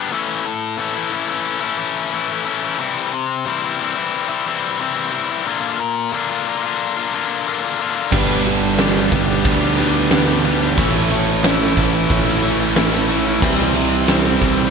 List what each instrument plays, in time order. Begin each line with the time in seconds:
Already playing: distorted electric guitar G3
0.11 distorted electric guitar A2 E3 A3 C#4 E4
0.46 muted distorted electric guitar stroke
0.78 distorted electric guitar A2 E3 A3 C#4 E4
0.94 distorted electric guitar A3 C#4 E4
1.11 distorted electric guitar E3 A3 C#4
1.15 distorted electric guitar E4
1.28 distorted electric guitar A3 C#4 E4
1.61 distorted electric guitar A3 C#4 E4
1.77 distorted electric guitar E3 A3 C#4 E4
2.12 distorted electric guitar A2 E3 A3 C#4 E4
2.28 distorted electric guitar A3 C#4 E4
2.45 distorted electric guitar E3 A3 C#4 E4
2.62 distorted electric guitar A3 C#4 E4
2.79 distorted electric guitar C3 E3 G3 C4 E4
3.13 muted distorted electric guitar stroke
3.46 distorted electric guitar C3 E3 G3 C4 E4
3.63 distorted electric guitar G3 C4 E4
3.80 distorted electric guitar E3 G3 C4 E4
3.96 distorted electric guitar G3 C4 E4
4.29 distorted electric guitar G3 C4 E4
4.46 distorted electric guitar E3 G3 C4 E4
4.79 distorted electric guitar C3 E3 G3 C4 E4
4.95 distorted electric guitar G3 C4 E4
5.12 distorted electric guitar E3 G3 C4 E4
5.29 distorted electric guitar G3 C4 E4
5.46 distorted electric guitar A#2 D3 A#3 D4 F4
5.80 muted distorted electric guitar stroke
6.12 distorted electric guitar A#2 D3 A#3 D4 F4
6.29 distorted electric guitar A#3 D4 F4
6.46 distorted electric guitar D3 A#3 D4 F4
6.63 distorted electric guitar A#3 D4 F4
6.97 distorted electric guitar A#3 D4 F4
7.13 distorted electric guitar D3 A#3 D4 F4
7.46 distorted electric guitar A#2 D3 A#3 D4 F4
7.62 distorted electric guitar A#3 D4 F4
7.79 distorted electric guitar D3 A#3 D4 F4
7.95 distorted electric guitar A#3 D4 F4
8.12 fingered electric bass G1, distorted electric guitar G2 D3 G3 B3 D4 G4, steel-string acoustic guitar B4, kick, crash
8.45 overdriven electric guitar G2 D3 G3, steel-string acoustic guitar D4 G4 B4, muted distorted electric guitar stroke, ride
8.77 distorted electric guitar G2 D3 G3 B3 D4 G4, steel-string acoustic guitar B4, snare, clap, ride
8.95 distorted electric guitar G3 B3 D4 G4
9.12 fingered electric bass G1, overdriven electric guitar G2 D3, distorted electric guitar G3 B3 D4 G4, kick, clap, ride
9.28 distorted electric guitar G3 B3 D4 G4
9.45 fingered electric bass D2, overdriven electric guitar G2 D3 G3, distorted electric guitar B3 D4 G4, kick, ride
9.61 distorted electric guitar G3 B3 D4 G4
9.77 overdriven electric guitar G2 D3, distorted electric guitar G3 B3 D4 G4, steel-string acoustic guitar B4, ride
10.11 distorted electric guitar G2 D3 G3 B3 D4 G4, steel-string acoustic guitar B4, snare, clap, ride
10.28 distorted electric guitar G3 B3 D4 G4, snare
10.45 overdriven electric guitar G2 D3, distorted electric guitar G3 B3 D4 G4, steel-string acoustic guitar B4, ride
10.61 distorted electric guitar G3 B3 D4 G4
10.78 fingered electric bass A1, distorted electric guitar A2 E3 A3 C#4 E4, steel-string acoustic guitar C#5, kick, ride
10.95 snare
11.11 overdriven electric guitar A2 E3 A3, steel-string acoustic guitar A3 C#4 E4 C#5, muted distorted electric guitar stroke, ride
11.44 distorted electric guitar A2 E3 A3 C#4 E4, steel-string acoustic guitar C#5, snare, clap, ride
11.60 distorted electric guitar A3 C#4 E4
11.76 fingered electric bass A1, overdriven electric guitar A2, distorted electric guitar E3 A3 C#4 E4, kick, ride
11.93 distorted electric guitar A3 C#4 E4
12.10 fingered electric bass A1, overdriven electric guitar A2 E3 A3, distorted electric guitar C#4 E4, kick, ride
12.26 distorted electric guitar A3 C#4 E4
12.42 overdriven electric guitar A2, distorted electric guitar E3 A3 C#4 E4, steel-string acoustic guitar C#5, ride
12.75 distorted electric guitar A2 E3 A3 C#4 E4, steel-string acoustic guitar C#5, snare, clap, ride
12.91 distorted electric guitar A3 C#4 E4
13.07 overdriven electric guitar A2, distorted electric guitar E3 A3 C#4 E4, steel-string acoustic guitar C#5, ride
13.25 distorted electric guitar A3 C#4 E4
13.41 fingered electric bass C2, distorted electric guitar C3 E3 G3 C4 E4, steel-string acoustic guitar C5, kick, crash
13.75 overdriven electric guitar C3 G3 C4, steel-string acoustic guitar G3 C4 E4 C5, muted distorted electric guitar stroke, ride
14.08 distorted electric guitar C3 E3 G3 C4 E4, steel-string acoustic guitar C5, snare, clap, ride
14.25 distorted electric guitar G3 C4 E4
14.41 fingered electric bass C2, overdriven electric guitar C3, distorted electric guitar E3 G3 C4 E4, kick, clap, ride
14.58 distorted electric guitar G3 C4 E4